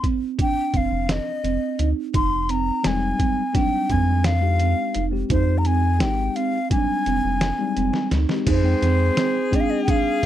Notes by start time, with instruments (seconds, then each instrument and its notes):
0.04 marimba C4, kick, closed hi-hat
0.39 marimba D4, flute G5, kick, closed hi-hat
0.74 analog synth bass F1, marimba C4, flute F5, kick, closed hi-hat
0.92 analog synth bass F1
1.09 flute D#5, snare, closed hi-hat
1.44 analog synth bass F1, marimba C4, closed hi-hat
1.79 analog synth bass D2, marimba D#4, closed hi-hat
2.14 analog synth bass F1, marimba D#4, flute C6, kick, closed hi-hat
2.42 flute C6
2.49 marimba C4, flute A#5, closed hi-hat
2.83 analog synth bass F1, tine electric piano G3 G#3 C4 D#4, flute G#5, snare, closed hi-hat
3.19 marimba C4, kick, closed hi-hat
3.53 tine electric piano G3 G#3 C4 D#4, marimba D4, flute G5, kick, snare, closed hi-hat
3.90 analog synth bass F2, marimba C4, flute G#5, kick, closed hi-hat
4.24 flute F5, snare, closed hi-hat
4.40 tine electric piano G#3 C4 D#4 G4
4.60 marimba C4, closed hi-hat
4.94 analog synth bass F1, marimba D#4, closed hi-hat
5.11 tine electric piano G#3 C4 D#4 G4
5.30 analog synth bass F2, marimba D#4, flute C5, kick, closed hi-hat
5.58 flute A#5
5.65 marimba C4, flute G#5, closed hi-hat
5.99 analog synth bass G#1, tine electric piano G#3 C4 D#4 G4, flute G5, snare, closed hi-hat
6.36 marimba C4, flute F5, closed hi-hat
6.70 tine electric piano G3 G#3 C4 D#4, marimba D4, flute G#5, kick, closed hi-hat
7.06 analog synth bass F1, marimba C4, closed hi-hat
7.24 analog synth bass F1
7.41 snare, closed hi-hat
7.59 tine electric piano G3 G#3 C4 D#4
7.77 analog synth bass F1, marimba C4, closed hi-hat
7.93 snare
8.11 analog synth bass D2, marimba D#4, snare, closed hi-hat
8.29 tine electric piano G#3 C4 D#4 G4, snare
8.47 analog synth bass F2, marimba D#4, alto saxophone G#4, flute C5, kick, closed hi-hat, crash
8.63 tine electric piano G#3 C4 D#4 G5
8.82 analog synth bass F2, marimba C4, snare, closed hi-hat
9.17 marimba C4, snare, closed hi-hat
9.51 tine electric piano G#3 C4 D#4 G5, marimba D4, kick, closed hi-hat
9.55 flute D#5
9.60 flute F5
9.70 flute D#5
9.84 marimba D4, flute G5, kick, snare, closed hi-hat
9.90 flute F5